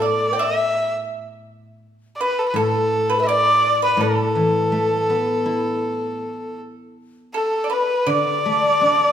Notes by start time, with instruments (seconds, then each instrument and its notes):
Already playing: guzheng A2, xiao A4
0.02 pipa D5
0.06 erhu D5
0.33 pipa G5
0.39 pipa E5, xiao E5, erhu E5
2.15 erhu D5
2.20 xiao B4, erhu B4, pipa B4
2.39 erhu A4
2.48 erhu B4, xiao B4
2.54 guzheng A2, xiao A4, pipa A4, erhu A4
3.10 pipa B4, xiao B4
3.16 xiao A4
3.21 xiao B4, erhu E5
3.27 erhu D5, xiao D5, pipa D5
3.82 pipa B4, erhu B4
3.97 guzheng A2, pipa A4
4.01 erhu A4, xiao A4
4.35 guzheng E3
4.72 guzheng A3
5.10 guzheng B3
5.46 guzheng E4
7.34 xiao A4, pipa A4, erhu A4
7.64 pipa D5
7.70 pipa B4, erhu B4, xiao B4
8.07 guzheng D3, pipa D5, xiao D5, erhu D5
8.46 guzheng A3
8.81 guzheng D4